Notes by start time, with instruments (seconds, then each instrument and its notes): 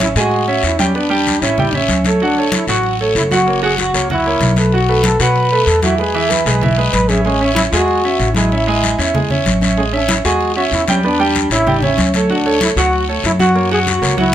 Already playing: upright bass A1, grand piano C#4 C#5 E5
0.00 trombone E4, high conga, short guiro
0.15 upright bass A2, grand piano G#3 G#4 G#5, trombone F#4, short guiro
0.31 high conga, long guiro
0.47 grand piano C#4 C#5 E5, high conga
0.63 upright bass E2, trombone E4, high conga, short guiro
0.79 grand piano G3 G4 G5, trombone C#4, high conga, short guiro
0.95 grand piano B3 B4 D5, trombone D4, high conga, long guiro
1.10 grand piano G3 G4 G5, high conga
1.26 high conga, short guiro
1.42 upright bass A1, grand piano C#4 C#5 E5, trombone E4, high conga, short guiro
1.58 grand piano G3 G4 G5, high conga, low conga, long guiro
1.73 trombone C#4, grand piano C#4 C#5 E5, high conga, low conga
1.89 upright bass D2, high conga, short guiro
2.04 grand piano A3 A4 C#5, high conga, short guiro
2.20 grand piano F#3 F#4 F#5, trombone D4, high conga, long guiro
2.36 grand piano A3 A4 C#5, high conga
2.52 trombone E4, high conga, short guiro
2.67 upright bass A1, grand piano F#3 F#4 F#5, trombone F#4, short guiro
2.83 high conga, long guiro
2.99 grand piano A3 A4 C#5, high conga
3.15 upright bass F#1, trombone E4, high conga, short guiro
3.31 grand piano F#3 F#4 F#5, trombone F#4, high conga, short guiro
3.46 grand piano A#3 A#4 C#5, high conga, long guiro
3.62 grand piano F#3 F#4 F#5, trombone G#4, high conga
3.78 trombone F#4, high conga, short guiro
3.94 upright bass C#2, grand piano A#3 A#4 C#5, high conga, short guiro
4.10 grand piano F#3 F#4 F#5, trombone E4, high conga, low conga, long guiro
4.26 grand piano A#3 A#4 C#5, high conga
4.40 upright bass B1, high conga, short guiro
4.56 grand piano A3 A4 B4, high conga, short guiro
4.72 grand piano F#3 F#4 F#5, trombone F#4, high conga, long guiro
4.88 grand piano A3 A4 B4, high conga
5.04 trombone A4, high conga, short guiro
5.20 upright bass B2, grand piano F#3 F#4 F#5, trombone B4, short guiro
5.36 high conga, long guiro
5.52 grand piano A3 A4 B4, high conga
5.66 upright bass E2, trombone A4, high conga, short guiro
5.82 grand piano E3 E4 E5, trombone F#4, high conga, short guiro
5.98 grand piano G#3 G#4 B4, trombone G#4, high conga, long guiro
6.14 grand piano E3 E4 E5, high conga
6.30 trombone B4, high conga, short guiro
6.46 upright bass B1, grand piano G#3 G#4 B4, high conga, short guiro
6.61 grand piano E3 E4 E5, high conga, low conga, long guiro
6.78 grand piano G#3 G#4 B4, high conga
6.93 upright bass A1, trombone B4, high conga, short guiro
7.09 grand piano C#4 C#5 E5, trombone G#4, high conga, short guiro
7.24 grand piano G#3 G#4 G#5, trombone C#4, high conga, long guiro
7.41 grand piano C#4 C#5 E5, high conga
7.55 trombone E4, high conga, short guiro
7.70 upright bass E2, grand piano G#3 G#4 G#5, trombone F#4, short guiro
7.88 high conga, long guiro
8.04 grand piano C#4 C#5 E5, high conga
8.19 upright bass A1, high conga, short guiro
8.33 grand piano G#3 G#4 G#5, trombone E4, high conga, short guiro
8.52 grand piano C#4 C#5 E5, high conga, long guiro
8.67 grand piano G#3 G#4 G#5, high conga
8.83 high conga, short guiro
8.98 upright bass E2, grand piano C#4 C#5 E5, high conga, short guiro
9.14 grand piano G#3 G#4 G#5, high conga, low conga, long guiro
9.30 grand piano C#4 C#5 E5, high conga, low conga
9.46 upright bass A1, high conga, short guiro
9.61 grand piano C#4 C#5 E5, high conga, short guiro
9.77 grand piano G#3 G#4 G#5, trombone C#4, high conga, long guiro
9.93 grand piano C#4 C#5 E5, trombone D4, high conga
10.08 trombone E4, high conga, short guiro
10.24 upright bass E2, grand piano G#3 G#4 G#5, trombone F#4, short guiro
10.41 high conga, long guiro
10.56 grand piano C#4 C#5 E5, trombone F#4, high conga
10.72 upright bass E2, trombone E4, high conga, short guiro
10.88 grand piano G3 G4 G5, trombone C#4, high conga, short guiro
11.03 grand piano B3 B4 D5, trombone D4, high conga, long guiro
11.19 grand piano G3 G4 G5, high conga
11.35 high conga, short guiro
11.50 upright bass A1, grand piano C#4 C#5 E5, trombone E4, high conga, short guiro
11.67 grand piano G3 G4 G5, high conga, low conga, long guiro
11.82 trombone C#4, grand piano C#4 C#5 E5, high conga, low conga
11.98 upright bass D2, high conga, short guiro
12.14 grand piano A3 A4 C#5, high conga, short guiro
12.29 grand piano F#3 F#4 F#5, trombone D4, high conga, long guiro
12.46 grand piano A3 A4 C#5, high conga
12.61 trombone E4, high conga, short guiro
12.76 upright bass D2, grand piano F#3 F#4 F#5, trombone F#4, short guiro
12.93 high conga, long guiro
13.08 grand piano A3 A4 C#5, high conga
13.24 upright bass F#2, trombone E4, high conga, short guiro
13.39 grand piano F#3 F#4 F#5, trombone F#4, high conga, short guiro
13.55 grand piano A#3 A#4 C#5, high conga, long guiro
13.71 grand piano F#3 F#4 F#5, trombone G#4, high conga
13.87 trombone F#4, high conga, short guiro
14.02 upright bass C#2, grand piano A#3 A#4 C#5, high conga, short guiro
14.17 grand piano F#3 F#4 F#5, trombone E4, high conga, long guiro